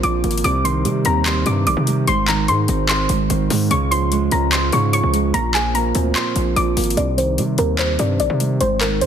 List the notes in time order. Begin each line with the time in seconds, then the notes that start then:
Already playing: A#2 F3 A#3 C4
0.03 A#1 F3 D6, closed hi-hat
0.24 G#1 A#3, closed hi-hat, open hi-hat
0.31 closed hi-hat
0.37 closed hi-hat
0.44 C2 C3 D6, closed hi-hat
0.64 D#3 C6, closed hi-hat
0.85 C3 G3, closed hi-hat
1.05 D#2 C4 A#5, closed hi-hat
1.26 C6, clap, closed hi-hat
1.46 G2 C3 D6, closed hi-hat
1.67 A#1 D#3 D6, closed hi-hat
1.77 C3
1.87 G3, closed hi-hat
2.07 G#1 G#2 C6, closed hi-hat
2.28 D#3 A#5, clap, closed hi-hat
2.48 G#2 G#3 C6, closed hi-hat
2.68 G#1 C4, closed hi-hat
2.89 C6, clap, closed hi-hat
3.09 G#1 G#2, closed hi-hat
3.30 G#1 D#3, closed hi-hat
3.50 G#2 G#3, open hi-hat
3.70 C#2 C#3 C#6, closed hi-hat
3.91 F3 C6, closed hi-hat
4.11 G#3, closed hi-hat
4.31 C#2 C#4 A#5, closed hi-hat
4.52 C6, clap, closed hi-hat
4.72 G#2 C#3 C#6, closed hi-hat
4.93 F3 C#6, closed hi-hat
5.03 C#2
5.13 G#3, closed hi-hat
5.34 A#1 A#2 A#5, closed hi-hat
5.54 F3 G#5, clap, closed hi-hat
5.74 A#3 A#5, closed hi-hat
5.95 D2 C4, closed hi-hat
6.16 C6, clap, closed hi-hat
6.36 A#1 A#2, closed hi-hat
6.56 A#1 F3 D6, closed hi-hat
6.77 G#1 A#3, closed hi-hat, open hi-hat
6.84 closed hi-hat
6.90 closed hi-hat
6.97 C2 C3 D5, closed hi-hat
7.17 D#3 C5, closed hi-hat
7.38 C3 G3, closed hi-hat
7.58 D#2 C4 A#4, closed hi-hat
7.79 C5, clap, closed hi-hat
7.99 G2 C3 D5, closed hi-hat
8.20 A#1 D#3 D5, closed hi-hat
8.30 C3
8.40 G3, closed hi-hat
8.61 G#1 G#2 C5, closed hi-hat
8.81 D#3 A#4, clap, closed hi-hat
9.01 G#2 G#3 C5, closed hi-hat